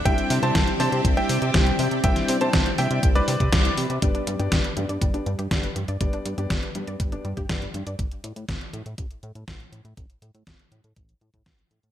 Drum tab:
HH |xxoxxxoxxxoxxxox|xxoxxxoxxxoxxxox|xxxxxxxxxxxxxxxx|xxxxxxxxxxxxxxxx|
SD |----o-------o---|-o--o-------o---|----o-------o---|----o-------o---|
BD |o---o---o---o---|o---o---o--oo---|o---o---o---o---|o---o---o--oo---|

HH |xxxxxxxxxxxxxxxx|xxxxxxxxxxxxxxxx|
SD |----o-------o---|----o-------o---|
BD |o---o---o---o---|o---o---o--oo---|